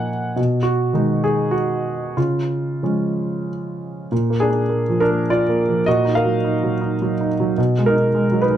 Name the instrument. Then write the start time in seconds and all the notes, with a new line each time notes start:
grand piano
Already playing: A#2 F3 A#3 D#4 F#5 G#5
0.36 B2
0.63 F#4
0.93 D#3 G#3 D#4
1.24 G#4
1.51 F#4
2.17 C#3 F4
2.83 F3 G#3 C#4
4.12 A#2
4.30 A#3
4.40 D4 G#4
4.50 D4
4.69 A#3
4.89 F3
5.00 D4 A#4
5.11 A#3
5.30 D4 F4 D5
5.49 A#3
5.69 F3
5.86 A#2 F#4 D#5
6.05 D#4
6.15 A#4 F5
6.25 F#3
6.44 D#4
6.63 F#3
6.81 D#4
7.02 F#3
7.21 D#4
7.40 F#3
7.58 B2
7.78 G#3
7.86 D#4 A#4
7.96 D#4
8.15 G#3
8.32 F#3
8.41 D#4 B4
8.50 G#3